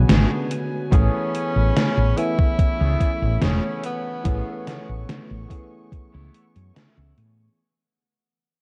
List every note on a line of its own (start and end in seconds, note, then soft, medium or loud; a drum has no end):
0.00 0.87 D3 medium
0.00 0.87 G#3 medium
0.00 0.87 B3 medium
0.00 0.88 F#4 medium
0.00 0.88 B4 medium
0.00 0.88 C#5 medium
0.00 7.55 G#5 medium
0.08 0.24 G#1 loud
0.08 0.50 B3 medium
0.08 0.50 C#4 medium
0.08 0.51 D4 medium
0.08 0.51 G#4 loud
0.08 snare loud
0.08 closed hi-hat medium
0.51 closed hi-hat medium
0.91 1.08 A1 loud
0.91 2.12 E3 loud
0.91 1.55 A3 loud
0.91 2.12 A3 medium
0.91 7.55 A3 medium
0.91 1.55 B3 loud
0.91 2.13 B3 medium
0.91 1.55 C#4 loud
0.91 2.19 C#4 loud
0.91 2.13 C#4 medium
0.91 1.56 G#4 loud
0.91 2.14 G#4 loud
0.91 7.55 C#5 medium
0.91 4.22 B5 medium
0.91 kick loud
0.91 closed hi-hat medium
1.35 closed hi-hat medium
1.56 1.70 A1 medium
1.77 snare loud
1.77 closed hi-hat medium
1.97 2.12 A1 medium
2.16 4.20 E3 medium
2.16 4.21 A3 medium
2.16 4.21 B3 medium
2.16 4.21 C#4 medium
2.16 3.45 E4 loud
2.16 4.22 G#5 medium
2.16 muted clean electric guitar stroke medium
2.16 closed hi-hat medium
2.39 kick loud
2.59 muted fretless electric bass stroke soft
2.59 kick loud
2.59 closed hi-hat medium
2.79 2.95 C#2 medium
2.79 3.11 A3 loud
2.79 3.11 B3 loud
2.79 3.11 C#4 loud
2.79 3.12 G#4 loud
3.00 kick medium
3.00 closed hi-hat medium
3.22 3.37 A1 loud
3.41 3.58 E1 loud
3.41 3.83 A3 medium
3.41 3.84 B3 medium
3.41 3.84 C#4 medium
3.41 3.84 C#4 loud
3.41 3.85 G#4 loud
3.41 snare loud
3.41 closed hi-hat medium
3.84 5.47 B3 loud
3.84 closed hi-hat medium
4.24 4.41 A1 loud
4.24 5.45 E3 loud
4.24 4.88 A3 loud
4.24 5.45 A3 medium
4.24 4.88 B3 loud
4.24 5.46 B3 medium
4.24 4.89 C#4 loud
4.24 5.46 C#4 medium
4.24 4.89 G#4 loud
4.24 5.46 G#4 loud
4.24 7.55 C#6 medium
4.24 kick loud
4.24 closed hi-hat medium
4.67 snare medium
4.67 closed hi-hat medium
4.89 5.03 A1 medium
5.09 snare loud
5.09 closed hi-hat medium
5.31 5.45 A1 medium
5.49 7.53 E3 medium
5.49 7.54 A3 medium
5.49 7.54 B3 medium
5.49 7.54 C#4 medium
5.49 7.55 G#4 medium
5.49 muted clean electric guitar stroke medium
5.49 kick medium
5.49 closed hi-hat medium
5.71 muted clean electric guitar stroke soft
5.92 kick loud
5.92 closed hi-hat medium
6.12 6.29 C#2 medium
6.12 6.44 A3 loud
6.12 6.44 B3 loud
6.12 6.44 C#4 loud
6.12 6.45 E4 loud
6.34 closed hi-hat medium
6.56 6.70 F#2 medium
6.56 closed hi-hat soft
6.74 7.16 A3 medium
6.74 7.17 B3 medium
6.74 7.17 C#4 medium
6.74 7.17 E4 loud
6.74 snare loud
6.74 closed hi-hat medium
6.98 7.12 C#2 medium
7.18 7.48 A2 loud
7.18 closed hi-hat medium